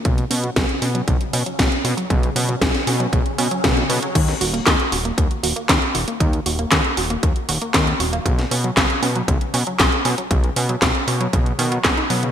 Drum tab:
CC |----------------|----------------|x---------------|----------------|
HH |xxoxxxoxxxoxxxox|xxoxxxoxxxoxxxox|xxoxxxoxxxoxxxox|xxoxxxoxxxoxxxox|
CP |----------------|----------------|----x-------x---|----x-------x---|
SD |----o-------o---|----oo------o---|-o--o-------o---|----o-------o---|
BD |o---o---o---o---|o---o---o---o---|o---o---o---o---|o---o---o---o---|

CC |----------------|----------------|
HH |xxoxxxoxxxoxxxox|xxoxxxoxxxoxxxox|
CP |----x-------x---|----x-------x---|
SD |-o--o-------o---|----o-------o---|
BD |o---o---o---o---|o---o---o---o---|